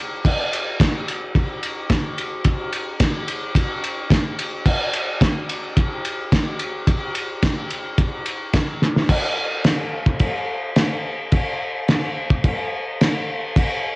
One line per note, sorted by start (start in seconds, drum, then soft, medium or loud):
0.25 kick loud
0.25 crash loud
0.53 ride medium
0.80 kick loud
0.80 snare loud
0.80 ride loud
1.08 ride medium
1.35 kick loud
1.35 ride loud
1.63 ride medium
1.90 kick loud
1.90 snare loud
1.90 ride loud
2.18 ride medium
2.44 kick loud
2.44 ride loud
2.73 ride medium
3.00 kick loud
3.00 snare loud
3.00 ride loud
3.28 ride medium
3.55 kick loud
3.55 ride loud
3.84 ride medium
4.10 kick loud
4.10 snare loud
4.10 ride loud
4.39 ride medium
4.66 kick loud
4.66 crash loud
4.93 ride medium
5.21 kick loud
5.21 snare loud
5.21 ride loud
5.49 ride medium
5.76 kick loud
5.76 ride loud
6.05 ride medium
6.32 kick loud
6.32 snare loud
6.32 ride loud
6.59 ride medium
6.87 kick loud
6.87 ride loud
7.15 ride medium
7.43 kick loud
7.43 snare loud
7.43 ride loud
7.70 ride medium
7.98 kick loud
7.98 ride loud
8.26 ride medium
8.53 kick loud
8.53 snare loud
8.53 ride loud
8.82 snare medium
8.96 snare medium
9.09 kick loud
9.09 crash loud
9.09 crash medium
9.64 snare loud
9.64 crash medium
10.06 kick loud
10.19 kick medium
10.19 crash medium
10.76 snare loud
10.76 crash medium
11.32 kick loud
11.32 crash medium
11.88 snare loud
11.88 crash medium
12.30 kick medium
12.44 kick loud
12.44 crash medium
13.01 snare loud
13.01 crash medium
13.56 kick loud
13.56 crash medium